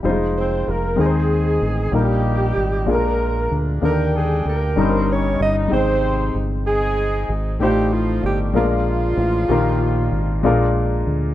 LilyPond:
<<
  \new Staff \with { instrumentName = "Alto saxophone" } { \time 6/8 \key ees \major \tempo 4. = 64 r8 c''8 bes'8 aes'4. | g'4. bes'4 r8 | bes'8 aes'8 bes'4 des''8 ees''8 | c''4 r8 aes'4 r8 |
g'8 f'8 g'8 f'4.~ | f'2 r4 | }
  \new Staff \with { instrumentName = "Horn section" } { \time 6/8 \key ees \major << { r8 <c' c''>8 <bes bes'>8 <aes aes'>4. | <g g'>4. <bes bes'>4 r8 | <g' bes'>8 <aes aes'>8 <bes bes'>8 <c' c''>8 <des' des''>8 <ees' ees''>8 | <c' c''>4 r8 <aes aes'>4 r8 |
<g g'>8 <f f'>8 <g g'>8 <f f'>4.~ | <f f'>2 r4 | } \\ { r4. <c' ees'>4. | <bes ees'>4. <d' f'>4. | <d' g''>4. ees'4. | <ees' g'>4. <c' ees'>4. |
<c' ees'>4. <aes d'>4.~ | <aes d'>2 r4 | } >> }
  \new Staff \with { instrumentName = "Grand piano" } { \time 6/8 \key ees \major <g aes ees' f' c''>4. <aes c' ees' bes' c''>4. | <g bes ees' bes'>4. <aes d' f' aes' bes'>4. | <bes d' a' bes'>4. <g des' ees' bes'>4. | <aes ees' c'' g''>2. |
<a ees' f' c''>4. <aes d' f' bes'>4. | <ees bes g' bes'>4. <aes d' f' bes'>4. | }
  \new Staff \with { instrumentName = "Grand piano" } { \clef bass \time 6/8 \key ees \major r4. ees4. | bes,4. bes,4. | d4. g,4. | c4. r4. |
a,4. bes4. | bes,4. bes,4. | }
  \new Staff \with { instrumentName = "Fingered electric bass" } { \clef bass \time 6/8 \key ees \major f,,4 f,,8 ees,4 a,,8 | bes,,4 aes,,8 bes,,4 d,8 | ees,4 d,8 g,,4 g,,8 | aes,,4 g,,4. aes,,8 |
a,,4 g,,8 bes,,4 a,,8 | bes,,4 aes,,8 bes,,4 d,8 | }
>>